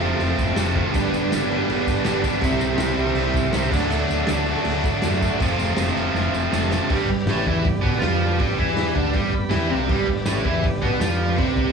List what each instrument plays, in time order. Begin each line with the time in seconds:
Already playing: overdriven electric guitar C3, transistor combo organ F4 A4 C5
0.00 fingered electric bass F1, overdriven electric guitar A3 C4, crash
0.04 overdriven electric guitar F3
0.19 fingered electric bass F1, tambourine, crash
0.38 fingered electric bass F1, kick, tambourine, crash
0.56 fingered electric bass F1, overdriven electric guitar F2 C3 F3 A3 C4, snare, tambourine, crash
0.75 overdriven electric guitar F3 A3 C4, kick, crash
0.91 overdriven electric guitar G2 D3 G3 B3 D4, transistor combo organ G4 B4, kick, tambourine, crash
0.95 fingered electric bass G1, transistor combo organ D5
1.12 fingered electric bass G1, tambourine, crash
1.32 fingered electric bass G1, overdriven electric guitar D3 G3 B3 D4, snare, tambourine, crash
1.51 overdriven electric guitar G3 B3 D4, crash
1.69 fingered electric bass G1, crash
1.87 kick, tambourine, crash
2.04 fingered electric bass G1, overdriven electric guitar G2 D3 G3 B3 D4, snare, tambourine, crash
2.22 overdriven electric guitar G3 B3 D4, kick, tambourine, crash
2.41 fingered electric bass C2, overdriven electric guitar C3 G3 C4 E4, transistor combo organ G4 C5, kick, tambourine, crash
2.46 transistor combo organ E5
2.60 fingered electric bass C2, tambourine, crash
2.78 fingered electric bass C2, overdriven electric guitar C3 G3 C4, snare, tambourine, crash
2.83 overdriven electric guitar E4
2.88 snare
2.96 fingered electric bass C2, overdriven electric guitar G3 C4 E4, tambourine, crash
3.06 snare
3.15 fingered electric bass C2, crash
3.34 fingered electric bass C2, kick, tambourine, crash
3.53 fingered electric bass C2, overdriven electric guitar C3 G3 C4 E4, snare, tambourine, crash
3.71 fingered electric bass D2, overdriven electric guitar D3 F#3 A3 D4, transistor combo organ A4 D5, kick, tambourine, crash
3.75 transistor combo organ F#5
3.88 fingered electric bass D2, overdriven electric guitar D3 F#3 A3 D4, tambourine, crash
4.09 fingered electric bass D2, tambourine, crash
4.27 fingered electric bass D2, overdriven electric guitar D3 F#3 A3 D4, snare, tambourine, crash
4.46 overdriven electric guitar A3 D4, tambourine, crash
4.51 overdriven electric guitar F#3, snare
4.65 fingered electric bass D2, crash
4.84 kick, tambourine, crash
5.02 fingered electric bass F#2, overdriven electric guitar D3 F#3, snare, tambourine, crash
5.07 overdriven electric guitar A3 D4
5.21 overdriven electric guitar A3 D4, kick, tambourine, crash
5.25 overdriven electric guitar F#3
5.39 fingered electric bass F1, overdriven electric guitar F2 C3 A3, transistor combo organ A4 C5 F5, kick, tambourine, crash
5.43 overdriven electric guitar F3 C4
5.59 fingered electric bass F1, tambourine, crash
5.77 fingered electric bass F1, overdriven electric guitar C3 F3 A3 C4, snare, tambourine, crash
5.87 snare
5.95 fingered electric bass F1, overdriven electric guitar A3 C4, transistor combo organ E5, tambourine, crash
6.00 overdriven electric guitar F3
6.14 fingered electric bass F1, transistor combo organ F5, snare, tambourine
6.33 fingered electric bass F1, tambourine
6.37 transistor combo organ G5
6.51 fingered electric bass F1, overdriven electric guitar F2 C3 F3 A3 C4, transistor combo organ A5, snare, tambourine
6.70 overdriven electric guitar F3 A3 C4, snare, tambourine
6.89 fingered electric bass G1, overdriven electric guitar G2 G3, transistor combo organ G4 B4, kick, crash
6.93 transistor combo organ D5
7.09 fingered electric bass G1, overdriven electric guitar G2, kick
7.19 snare
7.26 fingered electric bass A1, overdriven electric guitar A2 A3, snare, open hi-hat
7.46 fingered electric bass E2, overdriven electric guitar E3 E4, kick
7.64 fingered electric bass G1, overdriven electric guitar G2, kick, open hi-hat
7.82 fingered electric bass B1, overdriven electric guitar B2 B3, kick
7.93 snare
7.99 fingered electric bass F2, overdriven electric guitar F3 F4, snare, open hi-hat
8.39 fingered electric bass G1, overdriven electric guitar G2 G3, kick, open hi-hat
8.58 fingered electric bass E2, overdriven electric guitar E3 E4, kick
8.68 snare
8.77 snare, open hi-hat
8.95 fingered electric bass D2, overdriven electric guitar D3 D4, kick
9.13 fingered electric bass G1, overdriven electric guitar G2 G3, kick, open hi-hat
9.32 fingered electric bass G1, overdriven electric guitar G2, transistor combo organ B5, kick
9.50 fingered electric bass E2, overdriven electric guitar E3 E4, transistor combo organ G5, snare, open hi-hat
9.70 fingered electric bass C2, overdriven electric guitar C3 C4, transistor combo organ F5
9.88 fingered electric bass G1, overdriven electric guitar G2 G3, transistor combo organ G4 B4 D5, kick, crash
10.07 fingered electric bass G1, overdriven electric guitar G2, kick
10.16 snare
10.26 fingered electric bass A1, overdriven electric guitar A2 A3, snare, open hi-hat, tambourine
10.45 fingered electric bass E2, overdriven electric guitar E3 E4, kick
10.62 fingered electric bass G1, overdriven electric guitar G2, kick, open hi-hat
10.82 fingered electric bass B1, overdriven electric guitar B2 B3, kick
11.00 fingered electric bass F2, overdriven electric guitar F3 F4, snare, open hi-hat, tambourine
11.38 fingered electric bass C2, overdriven electric guitar C3 C4, kick, open hi-hat
11.57 kick